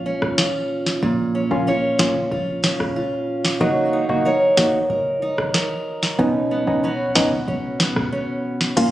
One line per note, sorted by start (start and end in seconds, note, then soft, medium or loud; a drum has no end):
0.00 0.15 A#1 loud
0.00 1.01 A#2 medium
0.00 0.37 F4 medium
0.00 1.68 C#5 medium
0.06 1.34 C#4 medium
0.22 0.36 B1 loud
0.22 kick medium
0.22 cross-stick medium
0.38 1.67 F4 medium
0.38 snare loud
0.86 snare medium
1.03 1.44 A#1 loud
1.03 3.61 A#2 medium
1.03 kick loud
1.35 1.67 C#4 medium
1.51 1.93 A#1 medium
1.51 1.72 A#3 medium
1.51 1.72 C#4 medium
1.51 1.72 F4 medium
1.51 kick medium
1.67 2.63 C#4 medium
1.67 2.30 F4 medium
1.67 3.96 C#5 medium
1.99 2.27 B1 medium
1.99 2.20 A#3 medium
1.99 2.21 C#4 medium
1.99 2.21 F4 medium
1.99 snare loud
2.16 kick medium
2.31 2.73 A#1 loud
2.31 2.95 F4 medium
2.31 kick medium
2.64 3.93 C#4 medium
2.64 snare loud
2.80 2.94 B1 medium
2.80 kick medium
2.80 cross-stick medium
2.96 3.67 F4 medium
3.45 snare medium
3.61 4.02 F#1 loud
3.61 7.11 F#3 medium
3.61 4.05 A#3 medium
3.61 4.05 D#4 medium
3.61 4.05 F#4 loud
3.61 kick loud
3.93 4.25 D#4 medium
4.09 4.51 F#1 medium
4.09 4.30 A#3 medium
4.09 4.30 D#4 medium
4.09 4.31 F#4 medium
4.09 kick medium
4.25 5.22 D#4 medium
4.25 4.89 A#4 medium
4.25 6.54 C#5 medium
4.57 4.85 G#1 medium
4.57 4.79 A#3 medium
4.57 4.79 D#4 medium
4.57 4.79 F#4 medium
4.57 snare loud
4.90 5.31 F#1 loud
4.90 5.53 A#4 medium
5.22 6.84 D#4 medium
5.38 5.52 G#1 medium
5.38 kick medium
5.38 cross-stick medium
5.54 6.25 A#4 medium
5.54 snare loud
6.03 snare medium
6.19 6.60 B1 loud
6.19 8.77 B2 medium
6.19 6.63 B3 loud
6.19 6.63 C#4 medium
6.19 6.64 D#4 loud
6.19 kick loud
6.51 6.82 B3 medium
6.67 7.09 B1 medium
6.67 6.88 B3 medium
6.67 6.88 C#4 medium
6.67 6.89 D#4 medium
6.67 kick medium
6.83 7.79 B3 medium
6.83 7.48 C#4 medium
6.83 8.77 F#4 medium
7.15 7.43 C#2 medium
7.15 7.37 B3 medium
7.15 7.37 C#4 medium
7.15 7.37 D#4 medium
7.15 snare loud
7.32 kick medium
7.48 7.89 B1 loud
7.48 8.12 C#4 medium
7.48 kick medium
7.80 8.83 B3 medium
7.80 snare loud
7.96 8.10 C#2 loud
7.96 kick medium
7.96 cross-stick medium
8.12 8.91 C#4 medium
8.61 snare medium
8.77 8.91 A#1 loud
8.77 8.91 A#2 medium
8.77 8.91 C#3 medium
8.77 8.91 F3 medium
8.77 8.91 A#3 medium
8.77 8.91 C#4 medium
8.77 8.91 F4 medium
8.77 8.91 F4 loud
8.77 8.91 F4 medium
8.77 kick loud
8.77 closed hi-hat medium
8.77 crash medium